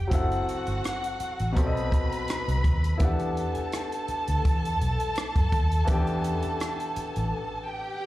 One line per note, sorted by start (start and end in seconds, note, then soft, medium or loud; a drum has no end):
0.00 0.12 E5 medium
0.07 1.51 F#3 medium
0.07 1.52 C4 medium
0.07 1.53 E4 medium
0.07 kick medium
0.12 0.40 F#1 medium
0.12 1.53 F#4 medium
0.12 1.54 A4 medium
0.12 1.53 F#5 medium
0.12 1.55 F#5 medium
0.12 closed hi-hat medium
0.32 closed hi-hat soft
0.49 closed hi-hat medium
0.67 0.80 G1 medium
0.67 closed hi-hat soft
0.84 cross-stick medium
0.84 closed hi-hat medium
1.04 closed hi-hat soft
1.20 muted fingered electric bass stroke soft
1.20 closed hi-hat medium
1.39 1.57 A1 medium
1.39 closed hi-hat soft
1.52 2.96 B2 medium
1.52 2.97 F#3 medium
1.52 2.97 B4 medium
1.52 2.97 B5 medium
1.56 2.14 B1 medium
1.56 2.98 C4 medium
1.56 2.99 A4 medium
1.56 1.65 D5 medium
1.56 kick medium
1.56 closed hi-hat medium
1.66 3.03 D#5 medium
1.77 closed hi-hat soft
1.92 kick medium
1.92 closed hi-hat soft
2.12 closed hi-hat soft
2.28 cross-stick medium
2.28 closed hi-hat medium
2.48 2.61 C2 medium
2.48 closed hi-hat soft
2.64 2.93 D#2 medium
2.64 kick medium
2.64 closed hi-hat soft
2.84 closed hi-hat soft
2.97 3.45 E2 medium
2.97 5.85 B3 medium
2.97 5.85 D4 medium
2.97 5.84 E4 medium
2.97 7.65 A4 medium
2.97 7.66 A5 medium
2.97 kick loud
2.97 closed hi-hat medium
3.03 5.86 G4 medium
3.03 5.87 F#5 medium
3.20 closed hi-hat soft
3.37 closed hi-hat medium
3.55 muted fingered electric bass stroke soft
3.55 closed hi-hat soft
3.72 cross-stick medium
3.72 closed hi-hat medium
3.92 closed hi-hat soft
4.08 muted fingered electric bass stroke soft
4.08 closed hi-hat medium
4.28 4.41 D2 medium
4.28 closed hi-hat soft
4.45 4.74 E2 medium
4.45 kick medium
4.45 closed hi-hat medium
4.65 closed hi-hat soft
4.81 4.97 B1 medium
4.81 closed hi-hat soft
5.00 closed hi-hat medium
5.16 cross-stick medium
5.16 closed hi-hat medium
5.36 5.49 F#2 medium
5.36 kick medium
5.36 closed hi-hat soft
5.52 5.81 D#2 medium
5.52 kick medium
5.52 closed hi-hat soft
5.72 closed hi-hat soft
5.85 6.33 E2 medium
5.85 8.06 E3 medium
5.85 8.06 B3 medium
5.85 kick medium
5.85 closed hi-hat medium
5.89 8.06 D4 medium
5.89 8.06 G4 medium
5.89 8.06 G5 medium
6.07 closed hi-hat soft
6.24 closed hi-hat medium
6.43 muted fingered electric bass stroke soft
6.43 closed hi-hat soft
6.60 cross-stick medium
6.60 closed hi-hat medium
6.80 closed hi-hat soft
6.96 muted fingered electric bass stroke soft
6.96 closed hi-hat medium
7.16 7.33 A1 medium
7.16 closed hi-hat soft
7.68 8.06 G4 medium
7.68 8.06 G5 medium